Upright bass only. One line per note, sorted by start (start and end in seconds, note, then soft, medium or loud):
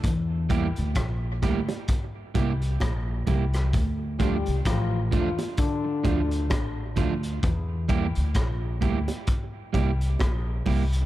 0.04 0.73 E2 loud
0.78 0.96 D2 medium
0.96 1.40 A#1 medium
1.43 1.68 D2 medium
2.36 2.79 C2 medium
2.82 3.25 A#1 medium
3.28 3.71 C2 medium
3.74 4.42 D2 loud
4.47 4.65 C2 medium
4.66 5.10 A1 medium
5.13 5.38 E2 medium
6.05 6.52 D2 medium
6.52 6.95 A1 medium
6.98 7.41 D2 loud
7.44 8.12 E2 loud
8.17 8.35 D2 medium
8.36 8.79 A#1 medium
8.83 9.07 D2 medium
9.75 10.18 C2 medium
10.21 10.64 A#1 medium
10.67 11.06 C2 medium